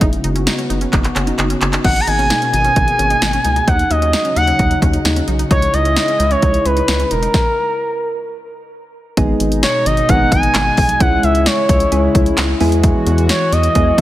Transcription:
Already playing: C#3
0.01 F#1 B3 D#4 F#4, kick, closed hi-hat
0.13 closed hi-hat
0.24 F#1 D#4, closed hi-hat
0.36 C#4, closed hi-hat
0.47 D#4, snare, closed hi-hat
0.59 C#4, closed hi-hat
0.70 F#1 D#4, closed hi-hat
0.81 C#4, closed hi-hat
0.93 F#1 D#4, kick, clap, closed hi-hat
1.04 clap, closed hi-hat
1.16 F#1 C#4, clap, closed hi-hat
1.27 D#4, closed hi-hat
1.39 F#1 D#4, clap, closed hi-hat
1.50 C#4, closed hi-hat
1.61 F#1 D#4, clap, closed hi-hat
1.73 D#4, clap, closed hi-hat
1.84 G#1 B2 A#3 D#4 G#4 F#5, kick, crash
1.96 closed hi-hat
2.00 A#5
2.07 G#1 D#4 G#5, closed hi-hat
2.19 C#4, closed hi-hat
2.30 D#4, snare, closed hi-hat
2.42 C#4, closed hi-hat
2.53 G#1 D#4 G#5, closed hi-hat
2.64 C#4, closed hi-hat
2.76 G#1 D#4, kick, closed hi-hat
2.88 closed hi-hat
2.99 G#1 C#4, closed hi-hat
3.10 D#4, closed hi-hat
3.22 G#1 D#4, snare, closed hi-hat
3.33 C#4, closed hi-hat
3.45 C#2 D#4, closed hi-hat
3.56 D#4, closed hi-hat
3.68 D#2 C#3 F#3 D#4 F#5, kick, closed hi-hat
3.79 closed hi-hat
3.90 D#2 D#4 D#5, closed hi-hat
4.02 C#4, closed hi-hat
4.13 D#4, snare, closed hi-hat
4.25 C#4, closed hi-hat
4.36 D#2 D#4 F#5, closed hi-hat
4.47 C#4, closed hi-hat
4.59 D#2 D#4, kick, closed hi-hat
4.71 closed hi-hat
4.82 D#2 C#4, kick, closed hi-hat
4.93 D#4, closed hi-hat
5.05 D#2 D#4, snare, closed hi-hat
5.16 C#4, closed hi-hat
5.28 B1 D#4, closed hi-hat
5.39 D#4, closed hi-hat
5.51 C#2 G#3 D#4 E4 C#5, kick, closed hi-hat
5.62 closed hi-hat
5.74 C#2 D#4 D#5, closed hi-hat
5.85 C#4, closed hi-hat
5.96 D#4, snare, closed hi-hat
6.08 C#4, closed hi-hat
6.19 C#2 D#4, closed hi-hat
6.31 C#4 C#5, closed hi-hat
6.42 C#2 D#4, kick, closed hi-hat
6.54 closed hi-hat
6.65 C#2 C#4 B4, closed hi-hat
6.77 D#4, closed hi-hat
6.88 C#2 D#4, snare, closed hi-hat
7.00 C#4, closed hi-hat
7.11 E1 D#4 A#4, closed hi-hat
7.23 D#4, closed hi-hat
7.34 kick, snare
9.17 G#1 B2 G#3 B3 D#4 G#4, kick, closed hi-hat
9.40 G#1, closed hi-hat
9.52 closed hi-hat
9.63 C#5, snare, closed hi-hat
9.86 G#1 D#5, closed hi-hat
9.97 closed hi-hat
10.09 G#1 G#3 B3 D#4 G#4 F#5, kick, closed hi-hat
10.32 G#1 G#5, kick, closed hi-hat
10.43 closed hi-hat
10.55 G#1, snare, clap, closed hi-hat
10.77 B1, kick, open hi-hat
10.89 closed hi-hat
11.00 C#2 C#3 G#3 C#4 E4 G#4 F#5, kick, closed hi-hat
11.23 C#2 E5, closed hi-hat
11.35 closed hi-hat
11.46 C#5, snare, closed hi-hat
11.69 C#2, kick, closed hi-hat
11.80 closed hi-hat
11.92 C#2 G#3 C#4 E4 G#4, closed hi-hat
12.15 C#2, kick, closed hi-hat
12.26 closed hi-hat
12.38 C#2, snare, clap, closed hi-hat
12.60 E2 E3 G#3 B3 E4 F#4 G#4, open hi-hat
12.72 closed hi-hat
12.84 kick, closed hi-hat
13.06 E2, closed hi-hat
13.18 closed hi-hat
13.29 C#5, snare, closed hi-hat
13.52 E2 D#5, closed hi-hat
13.63 closed hi-hat
13.75 E2 G#3 B3 E4 G#4, kick, closed hi-hat

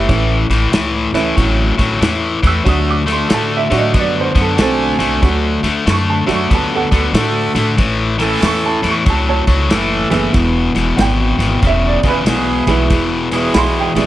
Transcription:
Already playing: G4 E5
0.08 A1 A2 E3 A3 C#4 E4, kick, snare, ride
0.50 A1 A2 E3, snare, ride
0.72 C#2 A2 E3, snare, ride
1.13 C#2 A2 E3 A3 C#4 E4, snare, ride
1.37 A1 A2 F#3, kick, snare, ride
1.78 A1 A2 F#3, kick, snare, ride
2.01 E2 A2 E3, snare, ride
2.43 E2 A2 E3, kick, snare, ride
2.47 E6
2.64 D2 D3 F#3 A3 D4 F#4, kick, snare, ride
2.69 D#6
2.91 D6
3.06 D3 A3 D4 F#4 A4, snare, ride
3.12 C6
3.29 A2 D3 A3, snare, ride
3.34 A5
3.57 E5
3.70 A2 D3 F#3 A3 D4 F#4, snare, ride
3.78 D#5
3.93 F#2 D3 B3, kick, snare, ride
3.99 D5
4.21 C5
4.35 F#2 D3 B3, kick, snare, ride
4.42 A4
4.57 B1 D3 A3 C4 D4 F#4 G#5, snare, ride
4.61 A4
4.99 B1 D3 A3, snare, ride
5.22 D2 D3 F#3 A3 D4 F#4, kick, snare, ride
5.63 D2 D3 A3, snare, ride
5.86 F#2 D3 A3, snare, ride
5.90 C#6
6.10 A5
6.26 F#2 D3 F#3 A3 D4 F#4, snare, ride
6.33 C#6
6.50 D2 D3 B3, kick, snare, ride
6.55 A5
6.75 A4 F#5
6.91 D2 D3 B3 D4 F#4 A4, kick, snare, ride
7.13 A2 D3 A3 D4 F#4 A4, snare, ride
7.55 A2 D3 A3, snare, ride
7.77 A1 A2 E3, kick, snare, ride
8.18 A2 E3 C#4 E4 A4, snare, ride
8.42 E2 A2 E3 C#6, snare, ride
8.66 A5
8.82 E2 A2 E3, snare, ride
8.89 C#6
9.06 C#2 A2 F#3, kick, snare, ride
9.10 A5
9.29 C#5 A5
9.47 C#2 A2 F#3, kick, snare, ride
9.69 F#1 A2 E3 C#4 E4 A4, snare, ride
10.10 F#1 A2 E3 B3 E4 G#4, snare, ride
10.33 E1 E2 B2, kick, snare, ride
10.74 E1 E2 B2, snare, ride
10.96 G#1 E2 B2 F#5, snare, ride
11.01 G5
11.38 G#1 E2 B2, snare, ride
11.62 E1 E2 C#3, kick, snare, ride
11.67 E5
11.88 D5
12.03 E1 E2 C#3 B3 E4 G#4, kick, snare, ride
12.09 B4
12.25 B1 E2 B2 B3 E4 G#4, snare, ride
12.67 B1 E2 B2 E3 G#3 B3 E4, kick, snare, ride
12.90 E1 E2 B2, kick, snare, ride
13.31 E2 B2 B3 E4 G#4, snare, ride
13.54 B1 E2 B2 B5 C6, snare, ride
13.80 G5
13.95 B1 E2 B2 E3 G#3 B3 E4, snare, ride
14.00 D5

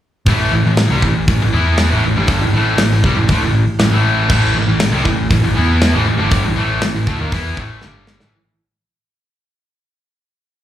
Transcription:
0.26 A1 A2 E3 A3, kick, open hi-hat
0.51 A1 A2 E3
0.65 A1 A2 E3
0.77 snare, open hi-hat
0.90 C2 C3 G3
1.02 A1 A2 E3, kick
1.28 A1 A2 E3, kick, open hi-hat
1.42 A1 A2 E3
1.53 E2 E3 B3 E4
1.77 snare, open hi-hat
1.91 A1 A2 E3
2.04 A1 A2 E3
2.16 G1 G2 D3 G3
2.27 kick, open hi-hat
2.41 A1 A2 E3
2.53 A1 A2 E3 A3
2.78 A1 A2 E3, snare, open hi-hat
2.92 A1 A2 E3
3.04 C2 C3 G3, kick
3.18 A1 A2 E3
3.28 D2 D3 A3, kick, open hi-hat
3.42 A1 A2
3.46 E3
3.79 A1 A2 E3, snare, open hi-hat
3.91 A1 A2 E3 A3
4.30 A1 A2 E3 A3, kick, crash
4.55 A1 A2 E3
4.68 A1 A2 E3
4.80 snare, open hi-hat
4.92 C2 C3 G3
5.05 A1 A2 E3, kick
5.31 A1 A2 E3, kick, open hi-hat
5.43 A1 A2 E3
5.57 E2 E3 B3 E4
5.81 snare, open hi-hat
5.94 A1 A2 E3
6.07 A1 A2 E3
6.17 G1 G2 D3 G3
6.31 kick, open hi-hat
6.44 A1 A2 E3
6.56 A1 A2 E3 A3
6.81 A1 A2 E3, snare, open hi-hat
6.96 A1 A2 E3
7.06 D2 D3 A3, kick
7.20 D#2 D#3 A#3
7.32 E2 E3 B3 E4, kick, open hi-hat
7.57 A1 A2 E3 A3, kick
7.81 G1 G2 D3 G3, snare
8.07 snare
8.20 A1 A2 E3, snare

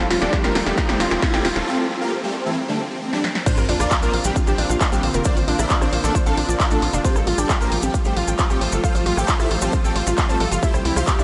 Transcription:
Already playing: F3 G3 A3, riser
0.10 F1 F4, snare, open hi-hat
0.22 F1 D4 G4 A4 D5 G5, snare, closed hi-hat
0.33 F4 G4, kick, snare, closed hi-hat
0.44 F1 A#3 F4 G4 A#4 C5, snare, closed hi-hat
0.55 F1 F4 G5, snare, open hi-hat
0.66 F1 G3 A3 C4 G4, snare, closed hi-hat
0.78 F4, kick, snare, closed hi-hat
0.89 F1 G3 A3 C4 G4 C5, snare, closed hi-hat
1.00 F1 F4, snare, open hi-hat
1.11 F1 F4 G5, snare, closed hi-hat
1.22 F4, kick, snare, closed hi-hat
1.33 F1 G3 A3 C4 G4 G5, snare, closed hi-hat
1.45 F1 F4 C5, snare, open hi-hat
1.56 F1 F4 A4, snare, closed hi-hat
1.67 A3 C4 F4 A4
1.78 C4
1.90 C4
2.01 A#3 F4 G4 A#4
2.12 C4
2.23 G3 A3 C4 G4
2.34 C4
2.46 E3 A3 C4 E4
2.57 C4
2.68 D3 G3 A3 D4
2.79 C4
2.90 C4
3.02 C4
3.13 D3 G3 A3 D4, snare
3.24 C4, snare
3.35 C4, snare
3.46 D3 A#3 C4 D4 F4 C5, kick, closed hi-hat, crash, sub drop, cabasa
3.57 A#1 F4 A#4, cross-stick, closed hi-hat, cabasa
3.69 A#1 D4 F4, open hi-hat
3.80 A#1 D4 F4 A#4 D5 F5, cross-stick, closed hi-hat, cabasa
3.91 F4, kick, clap, closed hi-hat, cabasa
4.02 A#1 A#3 D4 F4 A#4 C5, closed hi-hat, cabasa
4.13 A#1 F4 F5, open hi-hat
4.24 A#1 G3 C4 D4 G4, closed hi-hat, cabasa
4.36 F4, kick, closed hi-hat, cabasa
4.47 A#1 G3 C4 D4 G4 C5, closed hi-hat, cabasa
4.58 A#1 D4 F4, open hi-hat
4.70 A#1 F4 F5, closed hi-hat, cabasa
4.81 D4 F4, kick, clap, closed hi-hat, cabasa
4.92 A#1 G3 C4 D4 G4 F5, closed hi-hat, cabasa
5.03 A#1 F4 C5, open hi-hat
5.14 F1 F4 A#4, closed hi-hat, cabasa
5.25 D4 F4 A#4 C5 D5, kick, closed hi-hat, cabasa
5.37 A#1 F4 C5, open hi-hat, cabasa
5.48 A#1 D4 F4, open hi-hat
5.59 A#1 E4 A#4 C5 D5 E5, cross-stick, closed hi-hat, cabasa
5.70 F4 D5, kick, clap, closed hi-hat, cabasa
5.81 A#1 C4 D4 F4 C5, cross-stick, closed hi-hat, cabasa
5.93 A#1 F4 C5, open hi-hat
6.04 A#1 A3 D4 F4 A4, closed hi-hat, cabasa
6.15 F4 C5, kick, closed hi-hat, cabasa
6.26 A#1 A3 D4 F4 A4 F5, closed hi-hat, cabasa
6.37 A#1 D4 F4, open hi-hat
6.48 A#1 F4 D5, closed hi-hat, cabasa
6.60 F4 D5, kick, clap, closed hi-hat, cabasa
6.71 A#1 A3 D4 F4 A4, closed hi-hat, cabasa
6.82 A#1 F4, open hi-hat
6.93 F1 D4 F4, closed hi-hat, cabasa
7.04 F3 G3 A3 C4 F4 G4 A4 C5, kick, closed hi-hat, cabasa
7.16 A1 F4 A4, cross-stick, closed hi-hat, cabasa
7.27 A1 F4, open hi-hat
7.38 A1 D4 G4 A4 D5 G5, cross-stick, closed hi-hat, cabasa
7.49 F4 G4, kick, clap, closed hi-hat, cabasa
7.60 A1 A#3 F4 G4 A#4 C5, closed hi-hat, cabasa
7.72 A1 F4 G5, open hi-hat
7.82 A1 G3 A3 C4 G4, closed hi-hat, cabasa
7.94 F4, kick, closed hi-hat, cabasa
8.05 A1 G3 A3 C4 G4 C5, closed hi-hat, cabasa
8.16 A1 F4, open hi-hat
8.28 A1 F4 G5, closed hi-hat, cabasa
8.38 F4, kick, clap, closed hi-hat, cabasa
8.50 A1 G3 A3 C4 G4 G5, closed hi-hat, cabasa
8.61 A1 F4 C5, open hi-hat
8.72 G1 F4 A4, closed hi-hat, cabasa
8.84 F4 A4 C5 F5, kick, closed hi-hat, cabasa
8.95 A1 F4 C5, open hi-hat, cabasa
9.06 A1 F4, open hi-hat
9.17 A1 G4 A4 C5 F5 G5, cross-stick, closed hi-hat, cabasa
9.28 F4 F5, kick, clap, closed hi-hat, cabasa
9.40 A1 E4 F4 A4 C5 E5, cross-stick, closed hi-hat, cabasa
9.51 A1 F4 C5, open hi-hat
9.62 A1 C4 F4 G4 A4 C5, closed hi-hat, cabasa
9.73 F4 C5, kick, closed hi-hat, cabasa
9.84 A1 A3 C4 F4 A4 G5, closed hi-hat, cabasa
9.96 A1 F4 C5, open hi-hat
10.07 A1 F4, closed hi-hat, cabasa
10.17 F4 F5, kick, clap, closed hi-hat, cabasa
10.29 A1 A3 C4 F4 A4 C5, closed hi-hat, cabasa
10.40 A1 F4 A4, open hi-hat
10.51 G1 F4, closed hi-hat, cabasa
10.63 E3 C4 E4 G4 C5 E5, kick, closed hi-hat, cabasa
10.74 C2 G4 C5, cross-stick, closed hi-hat, cabasa
10.85 C2 E4 G4, open hi-hat
10.96 C2 F4 G4 C5 F5 C6, cross-stick, closed hi-hat, cabasa
11.07 G4, kick, clap, closed hi-hat, cabasa
11.19 C2 D4 E4 G4 D5 E5, closed hi-hat, cabasa

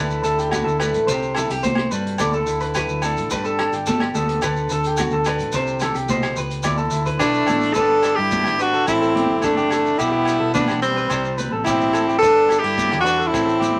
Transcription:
Already playing: D2 D3 B4
0.00 A3 D4 E4
0.10 maracas
0.24 D2 E4 A4, closed hi-hat, maracas
0.39 G4, closed hi-hat, maracas
0.51 E4 F#4, kick, cross-stick, closed hi-hat, high conga, low agogo, maracas
0.64 D2 A4, maracas
0.79 A3 D4 B4, cross-stick, closed hi-hat, muted conga, low agogo, maracas
0.94 A1, closed hi-hat, maracas
1.07 C2 C3 C5, kick, closed hi-hat, muted conga, maracas
1.12 G4
1.23 maracas
1.35 E4 A4, cross-stick, closed hi-hat, muted conga, low conga, low agogo, maracas
1.49 C2 G4, closed hi-hat, maracas
1.63 F#4 C5, kick, closed hi-hat, high conga, maracas
1.75 cross-stick, low agogo
1.91 G2 G3 D4 B4, closed hi-hat, maracas
2.07 closed hi-hat
2.18 D2 D3 E4 D5, kick, cross-stick, closed hi-hat, muted conga, high conga, low agogo, maracas
2.33 A4, maracas
2.46 D2 E4, closed hi-hat, maracas
2.60 B4, closed hi-hat, maracas
2.74 E4 B4, kick, cross-stick, closed hi-hat, low conga, low agogo, maracas
2.89 D2, maracas
3.02 A3 D4 A4, closed hi-hat, muted conga, low agogo, maracas
3.17 A1, closed hi-hat, maracas
3.30 G1 G2 G4 B4, kick, closed hi-hat, muted conga, maracas
3.45 A4, maracas
3.59 D4 A4, cross-stick, closed hi-hat, muted conga, low agogo
3.72 G1 G4, closed hi-hat, maracas
3.86 G4 A4, kick, closed hi-hat, high conga, maracas
4.00 G4, cross-stick, low agogo
4.15 D2 D3 B3 A4, closed hi-hat, high conga, maracas
4.29 closed hi-hat
4.42 D2 D3 A4 B4, kick, cross-stick, closed hi-hat, low agogo, maracas
4.56 maracas
4.69 D2 A4, closed hi-hat, maracas
4.83 G4, closed hi-hat, maracas
4.97 F#4 A4, kick, cross-stick, closed hi-hat, high conga, low agogo, maracas
5.11 D2 A4, maracas
5.24 D4 F#4 B4, cross-stick, closed hi-hat, muted conga, low agogo, maracas
5.39 A1, closed hi-hat, maracas
5.52 C2 C3 G4 C5, kick, closed hi-hat, muted conga, maracas
5.67 maracas
5.79 G4 A4, cross-stick, closed hi-hat, muted conga, low conga, low agogo, maracas
5.95 C2 G4, closed hi-hat, maracas
6.09 B2 C5, kick, closed hi-hat, high conga, maracas
6.22 cross-stick, low agogo, maracas
6.36 C#2 B4, closed hi-hat, maracas
6.50 closed hi-hat, maracas
6.63 D2 D3 E4 D5, kick, cross-stick, closed hi-hat, muted conga, high conga, low agogo, maracas
6.77 A4, maracas
6.90 D2 E4, closed hi-hat, maracas
7.06 B4, kick, closed hi-hat, maracas
7.19 B1 A3 D4 E4 B4, kick, cross-stick, closed hi-hat, low conga, low agogo, maracas
7.34 maracas
7.47 A1 A3 D4 A4, closed hi-hat, muted conga, high conga, low agogo, maracas
7.61 closed hi-hat, maracas
7.74 G1 G2 D3 B3 D4 A4 B4, kick, maracas
7.78 D4 G4, muted conga
8.03 D4 A4, cross-stick, closed hi-hat, muted conga, low agogo, maracas
8.15 G2 G4
8.20 E4
8.31 D3 B3, kick, high conga, maracas
8.44 G#1 G4, cross-stick, low agogo, maracas
8.59 D4 F#4 B4, closed hi-hat, maracas
8.74 A4, maracas
8.86 A1 A2 A3 C4 E4, kick, cross-stick, muted conga, low agogo, maracas
9.01 A4, maracas
9.15 C4 G4, closed hi-hat, high conga
9.30 F#1
9.42 F#1 E3 A3 D4 A4, kick, cross-stick, muted conga, high conga, low agogo, maracas
9.57 G4, maracas
9.71 A4, cross-stick, closed hi-hat, low agogo, maracas
9.86 maracas
9.98 B1 B2 G3 B3 E4 G4, kick, muted conga, maracas
10.11 G4
10.25 G3, cross-stick, closed hi-hat, muted conga, low agogo, maracas
10.40 B2 A4
10.54 E3 G3 B3 D4 B4, kick, high conga, low conga, maracas
10.68 B1 G4, cross-stick, low agogo, maracas
10.82 G3 C4, closed hi-hat, maracas
10.96 B4, maracas
11.10 C2 C3 G3 C5, kick, cross-stick, muted conga, low agogo, maracas
11.25 maracas
11.38 C4 B4, closed hi-hat, high conga, maracas
11.52 A1 A4
11.64 A1 B2 C4 E4 G4, kick, cross-stick, muted conga, high conga, low agogo, maracas
11.81 maracas
11.93 A2 A4, closed hi-hat, low agogo, maracas
12.08 G4, maracas
12.18 G2 D4 A4 B4
12.22 G1 D3 B3 D4 G4, kick, muted conga, maracas
12.49 B3 A4, cross-stick, closed hi-hat, muted conga, low agogo, maracas
12.59 E4 G4
12.64 G2 D4 G4
12.78 F#2, kick, high conga, maracas
12.91 E2 G4, cross-stick, low agogo, maracas
13.00 D4 F#4
13.05 G2 B4, closed hi-hat, maracas
13.18 A4, maracas
13.27 E4
13.31 A1 A2 E3 C4, muted steel-string acoustic guitar stroke, kick, cross-stick, muted conga, low agogo, maracas
13.36 C4
13.45 A4, maracas
13.60 C4 G4, closed hi-hat, high conga, maracas
13.76 F#1

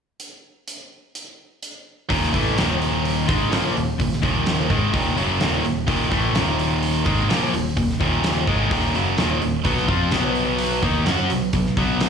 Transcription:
0.20 closed hi-hat
0.68 closed hi-hat
1.15 closed hi-hat
1.63 closed hi-hat
2.09 D#1 D#2 A#2 D#3, kick, open hi-hat
2.23 snare
2.33 A1 A2 E3 A3, kick, open hi-hat
2.56 D#1 D#2 A#2 D#3, snare, open hi-hat
2.82 open hi-hat
3.05 open hi-hat
3.27 G#1 G#2 D#3 G#3, kick, open hi-hat
3.51 A#1 A#2 F3 A#3, snare, open hi-hat
3.75 D#1 D#2 A#2, open hi-hat
3.98 D#1 D#2 A#2, kick, open hi-hat
4.12 snare
4.22 D#1 D#2 A#2 D#3, kick, open hi-hat
4.46 snare, open hi-hat
4.69 G#1 G#2 D#3 G#3, kick, open hi-hat
4.93 D#1 D#2 A#2 D#3, kick, open hi-hat
5.17 F#1 F#2 C#3 F#3, open hi-hat
5.40 D#1 D#2 A#2 D#3, snare, open hi-hat
5.63 D#1 D#2 A#2, open hi-hat
5.87 D#1 D#2 A#2 D#3, kick, open hi-hat
6.11 A1 A2 E3 A3, kick, open hi-hat
6.34 D#1 D#2 A#2 D#3, snare, open hi-hat
6.59 open hi-hat
6.83 open hi-hat
7.06 G#1 G#2 D#3 G#3, kick, open hi-hat
7.28 A#1 A#2 F3 A#3, snare, open hi-hat
7.53 D#1 D#2 A#2, open hi-hat
7.77 D#1 D#2 A#2, kick, open hi-hat
7.90 snare
8.00 D#1 D#2 A#2 D#3, kick, open hi-hat
8.24 snare, open hi-hat
8.47 G#1 G#2 D#3 G#3, kick, open hi-hat
8.71 D#1 D#2 A#2 D#3, kick, open hi-hat
8.95 F#1 F#2 C#3 F#3, open hi-hat
9.18 D#1 D#2 A#2 D#3, snare, open hi-hat
9.42 D#1 D#2 A#2, open hi-hat
9.65 B1 B2 F#3 B3, kick, open hi-hat
9.77 snare
9.88 F2 F3 C4 F4, kick, open hi-hat
10.12 B1 B2 F#3 B3, snare, open hi-hat
10.35 open hi-hat
10.59 open hi-hat
10.82 D#2 D#3 A#3 D#4, kick, open hi-hat
11.06 F#2 F#3 C#4 F#4, snare, open hi-hat
11.30 B1 B2 F#3, open hi-hat
11.53 B1 B2 F#3, kick, open hi-hat
11.66 snare
11.77 B1 B2 F#3 B3, kick, open hi-hat
12.00 snare, open hi-hat

